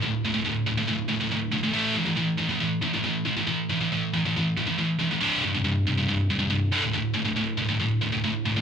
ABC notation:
X:1
M:4/4
L:1/16
Q:1/4=139
K:Dmix
V:1 name="Distorted electric guitar" clef=bass
[D,,A,,]2 [D,,A,,] [D,,A,,] [D,,A,,]2 [D,,A,,] [D,,A,,] [D,,A,,]2 [D,,A,,] [D,,A,,] [D,,A,,]2 [D,,A,,] [D,,A,,] | [A,,E,A,]2 [A,,E,] [A,,E,] [A,,E,]2 [A,,E,] [A,,E,] [A,,E,]2 [A,,E,] [A,,E,] [A,,E,]2 [A,,E,] [A,,E,] | [A,,E,]2 [A,,E,] [A,,E,] [A,,E,]2 [A,,E,] [A,,E,] [A,,E,]2 [A,,E,] [A,,E,] [A,,E,]2 [A,,E,] [A,,E,] | [C,,G,,C,]2 [C,,G,,] [C,,G,,] [C,,G,,]2 [C,,G,,] [C,,G,,] [C,,G,,]2 [C,,G,,] [C,,G,,] [C,,G,,]2 [D,,A,,D,] [D,,A,,] |
[D,,A,,]2 [D,,A,,] [D,,A,,] [D,,A,,]2 [D,,A,,] [D,,A,,] [D,,A,,]2 [D,,A,,] [D,,A,,] [D,,A,,]2 [D,,A,,] [D,,A,,] |]